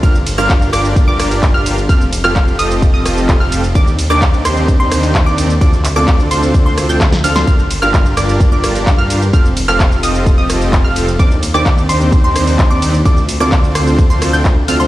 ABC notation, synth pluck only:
X:1
M:4/4
L:1/16
Q:1/4=129
K:Gm
V:1 name="Synth pluck"
f' z2 f'3 d'3 d'4 f'2 z | f' z2 f'3 e'3 e'4 f'2 z | d' z2 d'3 c'3 c'4 d'2 z | d' z2 d'3 c'3 c'2 g' z2 f' c' |
f' z2 f'3 d'3 d'4 f'2 z | f' z2 f'3 e'3 e'4 f'2 z | d' z2 d'3 c'3 c'4 d'2 z | d' z2 d'3 c'3 c'2 g' z2 f' c' |]